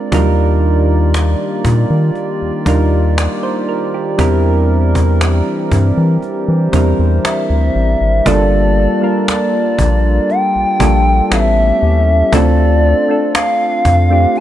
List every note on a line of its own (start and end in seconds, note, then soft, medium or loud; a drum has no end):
0.00 0.14 G#3 medium
0.00 0.10 C4 medium
0.00 0.14 C4 medium
0.00 0.12 D4 medium
0.00 0.14 F4 medium
0.00 0.14 A#4 medium
0.00 8.22 D5 medium
0.12 1.35 D#2 loud
0.12 4.15 D#3 medium
0.12 0.18 F#3 medium
0.12 4.15 A#3 medium
0.12 1.61 D4 medium
0.12 1.61 D#4 medium
0.12 4.15 F4 medium
0.12 1.61 F4 medium
0.12 8.22 G4 medium
0.12 1.62 A#4 loud
0.12 cajon bass loud
0.18 1.64 G3 loud
1.14 cajon slap loud
1.65 1.85 A#2 medium
1.65 cajon bass medium
1.90 2.11 D#3 loud
2.15 cajon slap soft
2.42 2.52 D#2 soft
2.65 3.28 D#2 medium
2.65 3.40 G3 medium
2.65 3.41 D4 medium
2.65 3.41 D#4 medium
2.65 3.41 F4 medium
2.65 3.18 A#4 medium
2.65 cajon bass medium
3.18 3.42 D5 medium
3.18 cajon slap loud
3.43 3.67 C5 medium
3.69 3.93 A#4 medium
3.94 4.42 G4 medium
4.18 5.42 E2 loud
4.18 8.22 E3 medium
4.18 5.67 G3 loud
4.18 5.67 C4 loud
4.18 8.21 C4 medium
4.18 5.68 D4 medium
4.18 5.68 E4 medium
4.18 6.20 A#4 medium
4.18 5.68 A#4 loud
4.18 cajon bass loud
4.95 cajon bass medium
5.21 cajon slap loud
5.72 5.92 G2 loud
5.72 cajon bass medium
5.97 6.18 E3 loud
6.22 8.24 C5 medium
6.22 cajon slap soft
6.48 6.69 E3 medium
6.72 6.94 E2 medium
6.72 7.84 G3 medium
6.72 7.84 C4 medium
6.72 7.85 D4 medium
6.72 7.85 E4 medium
6.72 7.86 A#4 medium
6.72 cajon bass medium
6.99 7.19 E2 medium
7.25 8.28 E5 loud
7.25 cajon slap loud
7.50 7.70 D2 medium
7.75 7.96 A1 medium
8.01 8.21 G#1 medium
8.25 8.88 G1 loud
8.25 8.81 G3 medium
8.25 11.28 G3 medium
8.25 8.82 A#3 medium
8.25 11.28 A#3 medium
8.25 11.28 D4 medium
8.25 8.82 D4 medium
8.25 11.28 F4 medium
8.25 8.82 F4 medium
8.25 8.82 A4 loud
8.25 9.28 D5 loud
8.25 11.28 A5 medium
8.25 cajon bass loud
9.01 10.31 G3 medium
9.01 10.32 A#3 medium
9.01 10.32 D4 medium
9.01 10.33 F4 medium
9.01 10.33 A#4 medium
9.28 10.32 D5 loud
9.28 cajon slap loud
9.79 10.20 A#1 loud
9.79 cajon bass medium
10.30 11.33 G5 loud
10.30 cajon slap soft
10.55 10.65 A#1 soft
10.79 11.21 A#1 loud
10.79 11.29 G3 medium
10.79 11.31 A#3 medium
10.79 11.31 D4 medium
10.79 11.31 F4 medium
10.79 11.32 A4 medium
10.79 cajon bass loud
11.30 11.72 A1 loud
11.30 12.12 G3 medium
11.30 12.32 A3 medium
11.30 12.12 B3 medium
11.30 12.32 C#4 medium
11.30 12.12 C#4 medium
11.30 12.13 E4 medium
11.30 12.32 G4 medium
11.30 12.13 A4 medium
11.30 12.35 E5 loud
11.30 cajon slap loud
11.82 12.23 D#2 medium
12.32 12.94 D2 loud
12.32 12.88 A3 loud
12.32 14.40 C4 medium
12.32 12.88 C4 medium
12.32 14.40 D4 medium
12.32 12.89 D4 medium
12.32 14.40 F4 medium
12.32 12.89 F4 medium
12.32 12.89 A4 loud
12.32 13.35 D5 loud
12.32 cajon bass loud
13.08 13.83 A3 medium
13.08 13.83 C4 medium
13.08 13.83 D4 medium
13.08 13.84 F4 medium
13.08 13.84 A4 medium
13.35 14.38 F5 loud
13.35 cajon slap loud
13.85 14.26 F2 loud
13.85 cajon bass medium
14.10 14.40 A3 medium
14.10 14.40 C4 medium
14.10 14.40 D4 medium
14.10 14.40 F4 medium
14.10 14.40 G4 medium
14.36 14.40 A5 loud
14.36 cajon slap soft